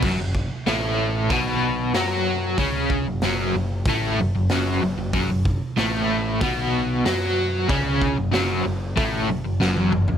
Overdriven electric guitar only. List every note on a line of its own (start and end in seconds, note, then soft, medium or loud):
0.04 0.19 F#2 medium
0.04 0.19 F#3 medium
0.20 0.45 F#2 medium
0.66 1.31 A2 loud
0.66 1.33 A3 loud
1.31 1.94 B2 loud
1.31 1.95 B3 loud
1.94 2.58 F#3 medium
1.94 2.58 F#4 loud
2.59 3.06 C#3 medium
2.59 3.06 C#4 medium
3.08 3.22 F#2 medium
3.23 3.54 F#2 loud
3.23 3.55 F#3 loud
3.55 3.81 F#2 medium
3.88 4.19 A2 medium
3.88 4.19 A3 loud
4.20 4.34 F#2 medium
4.35 4.49 F#2 medium
4.51 4.81 F#2 medium
4.51 4.82 F#3 loud
4.83 4.97 F#2 medium
4.98 5.12 F#2 medium
5.13 5.28 F#2 medium
5.13 5.29 F#3 loud
5.29 5.56 F#2 medium
5.77 6.41 A2 medium
5.77 6.41 A3 loud
6.41 7.05 B2 medium
6.41 7.05 B3 loud
7.05 7.68 F#3 loud
7.05 7.69 F#4 loud
7.68 8.16 C#3 medium
7.68 8.17 C#4 medium
8.17 8.30 F#2 medium
8.32 8.63 F#2 medium
8.32 8.64 F#3 loud
8.64 8.90 F#2 medium
8.96 9.28 A2 medium
8.96 9.28 A3 medium
9.29 9.44 F#2 medium
9.45 9.59 F#2 medium
9.60 9.91 F#2 loud
9.60 9.92 F#3 loud
9.92 10.08 F#2 medium
10.09 10.18 F#2 medium